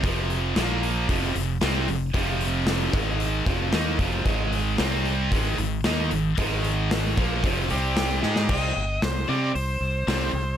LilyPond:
<<
  \new Staff \with { instrumentName = "Lead electric guitar" } { \time 4/4 \key c \minor \tempo 4 = 113 r1 | r1 | r1 | r2 r8 g'4. |
ees''4 c''8 d''8 c''2 | }
  \new Staff \with { instrumentName = "Distorted electric guitar" } { \clef bass \time 4/4 \key c \minor <f, c f>4 <bes, f bes>4 <f, c f>8 <f, c>8 <c g c'>8 <f, c>8 | <f, c f>4. <ees aes>4 <f, c f>8 <ees bes ees'>8 <f, c f>8 | <aes, ees aes>4 <c g c'>4 <aes, ees aes>8 <aes, ees>8 <ees bes ees'>8 <aes, ees>8 | <aes, ees aes>4. <bes, f bes>8 <f, c f>8 <c g c'>4 <aes ees' aes'>8 |
<c g c'>8 r4 <c g c'>8 r4 <c g c'>8 r8 | }
  \new Staff \with { instrumentName = "Distorted electric guitar" } { \clef bass \time 4/4 \key c \minor <f, c f>4 <bes, f bes>4 <f, c f>8 <f, c>8 <c g c'>8 <f, c>8 | <f, c f>4. <aes, ees aes>4 <f, c f>8 <ees bes ees'>8 <f, c f>8 | <aes, ees aes>4 <c g c'>4 <aes, ees aes>8 <aes, ees>8 <ees bes ees'>8 <aes, ees>8 | <aes, ees aes>4. <bes, f bes>8 <f, c f>8 <c g c'>4 <aes ees' aes'>8 |
<c g c'>8 r4 <c g c'>8 r4 <c g c'>8 r8 | }
  \new Staff \with { instrumentName = "Fingered electric bass" } { \clef bass \time 4/4 \key c \minor f,,4 bes,,4 f,,8 f,,8 c,8 f,,8 | f,,4. aes,,4 f,,8 ees,8 f,,8 | aes,,4 c,4 aes,,8 aes,,8 ees,8 aes,,8 | aes,,4. bes,,8 f,,8 c,4 aes,8 |
c,8 g,,8 c,8 c8 c,8 c,8 c,8 c,8 | }
  \new DrumStaff \with { instrumentName = "Drums" } \drummode { \time 4/4 <hho bd>8 hho8 <hho sn>8 hho8 <hho bd>8 hho8 <hho sn>8 hho8 | <hho bd>8 hho8 <hho sn>8 <hho bd>8 hho8 <hho bd>8 <hho sn>8 <hho bd>8 | <hho bd>8 hho8 <hho sn>8 hho8 <hho bd>8 hho8 <hho sn>8 hho8 | <hho bd>8 hho8 <hho sn>8 <hho bd>8 <hho bd>8 hho8 <hho sn>8 sn16 sn16 |
<cymc bd>4 <hho sn>4 hho4 <hho sn>4 | }
>>